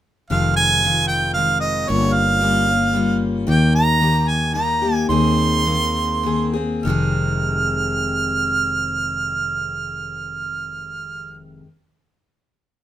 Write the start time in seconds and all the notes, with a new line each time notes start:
0.30 F1 F2 C3 D#3 G#3 C4 F4 F5
0.56 G#5
0.83 D#3 G#3 C4 F4
1.08 G5
1.34 D#3 G#3 C4 F5
1.38 F4
1.60 D#5
1.88 G1 G3 A#3 C#4 F4 C#5
2.13 F5
2.41 G3 A#3 C#4 F4
2.67 A#3 C#4 F4
2.93 G3 A#3 C#4 F4
3.47 D#2 D#3 A#3 D#4 G4 G5
3.75 A#5
4.00 D#3 A#3 D#4 G4
4.28 G#5
4.53 D#3 A#3 D#4 G4 A#5
4.82 A#3 D#4 G4
5.09 D#2 D#3 A#3 C4 G#4 C6
5.65 D#3 A#3 C4 G#4
6.23 D#3 A#3 C4 G#4
6.53 A#3 C4 G#4
6.83 F1 F2 C3 D#3 F6
6.87 G#3 C4 G#4